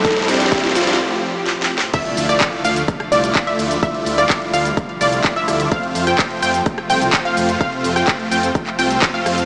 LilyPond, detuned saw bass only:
\new Staff \with { instrumentName = "Detuned saw bass" } { \clef bass \time 4/4 \key f \major \tempo 4 = 127 r1 | r8 d,8 r8 d,8 r8 c,8 r8 d,8 | r8 d,8 r8 d,8 r8 c,8 r8 d,8 | r8 f,8 r8 f,8 r8 c,8 r8 f,8 |
r8 f,8 r8 f,8 r8 c,8 r8 f,8 | }